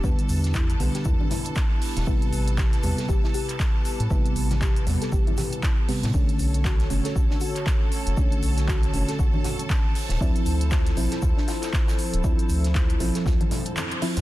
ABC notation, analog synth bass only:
X:1
M:4/4
L:1/16
Q:"Swing 16ths" 1/4=118
K:Ddor
V:1 name="Analog synth bass" clef=bass
E,, z E,,4 B,,, z E,, z6 E,,, | A,,, z A,,,4 E,, z A,,, z6 A,, | A,,, z A,,,4 E,, z A,,, z6 A,, | B,,, z B,,,4 ^F,,, z B,,, z6 F,,, |
B,,, z B,,,4 ^F,,, z B,,, z6 D,,, | D,, z D,,4 A,,, z D,, z6 D,,, | D,, z D,,4 A,,, z D,, z6 F,, |]